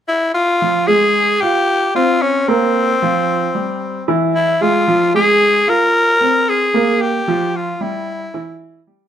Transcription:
0.08 E4
0.34 F4
0.62 F3 F4
0.87 G#3 G#4
1.41 F4 G4 F5
1.95 C4 F4 C5
2.22 C#4
2.48 A#3 C4 A#4
3.02 F3 F4
3.55 G3 G4
4.08 E3 E4
4.35 E4
4.61 G#3 F4 G#4
4.88 F3 F4
5.14 G#3 G#4
5.67 F4 A#4 F5
6.21 C4 C5
6.49 G#4
6.74 A#3 A#4
7.01 G4
7.28 F3 F4
7.56 F4
7.81 G3 E4 G4
8.34 E3 E4
8.87 G3 G4

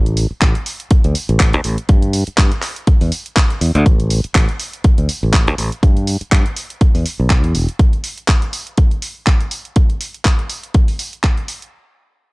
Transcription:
Already playing: A1
0.06 closed hi-hat
0.17 open hi-hat
0.31 muted fingered electric bass stroke
0.41 A1, kick, clap, closed hi-hat
0.55 closed hi-hat
0.66 open hi-hat
0.80 closed hi-hat
0.91 muted fingered electric bass stroke, kick, closed hi-hat
1.04 D2, closed hi-hat
1.15 open hi-hat
1.29 A1, closed hi-hat
1.40 kick, clap, closed hi-hat
1.53 D2, closed hi-hat
1.64 A1, open hi-hat
1.78 closed hi-hat
1.89 G2, kick, closed hi-hat
2.02 closed hi-hat
2.13 open hi-hat
2.27 muted fingered electric bass stroke, closed hi-hat
2.38 G2, kick, clap, closed hi-hat
2.52 closed hi-hat
2.62 clap, open hi-hat
2.76 closed hi-hat
2.87 kick, closed hi-hat
3.01 E2, open hi-hat
3.12 open hi-hat
3.26 closed hi-hat
3.37 kick, clap, closed hi-hat
3.50 closed hi-hat
3.61 E2, open hi-hat
3.75 D2, closed hi-hat
3.86 A1, kick, closed hi-hat
4.00 closed hi-hat
4.10 open hi-hat
4.24 muted fingered electric bass stroke, closed hi-hat
4.35 A1, kick, clap, closed hi-hat
4.49 closed hi-hat
4.59 open hi-hat
4.73 closed hi-hat
4.84 muted fingered electric bass stroke, kick, closed hi-hat
4.98 D2, closed hi-hat
5.09 open hi-hat
5.23 A1
5.33 kick, clap, closed hi-hat
5.47 D2, closed hi-hat
5.58 A1, open hi-hat
5.72 closed hi-hat
5.83 G2, kick, closed hi-hat
5.97 closed hi-hat
6.07 open hi-hat
6.21 muted fingered electric bass stroke, closed hi-hat
6.32 G2, kick, clap, closed hi-hat
6.46 closed hi-hat
6.57 open hi-hat
6.70 closed hi-hat
6.81 kick, closed hi-hat
6.95 E2, open hi-hat
7.06 open hi-hat
7.20 B1
7.30 kick, clap, closed hi-hat
7.44 E2, closed hi-hat
7.55 E1, open hi-hat
7.69 closed hi-hat
7.79 kick, closed hi-hat
7.93 closed hi-hat
8.04 open hi-hat
8.18 closed hi-hat
8.28 kick, clap, closed hi-hat
8.42 closed hi-hat
8.53 open hi-hat
8.67 closed hi-hat
8.78 kick, closed hi-hat
8.91 closed hi-hat
9.02 open hi-hat
9.27 kick, clap, closed hi-hat
9.41 closed hi-hat
9.51 open hi-hat
9.65 closed hi-hat
9.76 kick, closed hi-hat
9.90 closed hi-hat
10.01 open hi-hat
10.14 closed hi-hat
10.25 kick, clap, closed hi-hat
10.39 closed hi-hat
10.50 open hi-hat
10.63 closed hi-hat
10.74 kick, closed hi-hat
10.88 open hi-hat
10.99 open hi-hat
11.13 closed hi-hat
11.23 kick, clap, closed hi-hat
11.37 closed hi-hat
11.48 open hi-hat
11.62 closed hi-hat

